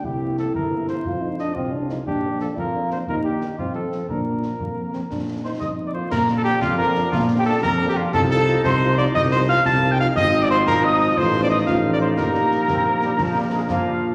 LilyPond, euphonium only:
\new Staff \with { instrumentName = "Euphonium" } { \time 6/8 \key bes \major \tempo 4. = 119 e'2. | f'8 ees'8 d'8 c'8 d'8 ees'8 | d'4. f'4. | ees'4. c'4. |
d'4. bes4 c'8 | d'4 ees'4. f'8 | r2. | r2. |
r2. | r2. | \key f \dorian r2. | r2. |
r2. | r4. f4. | }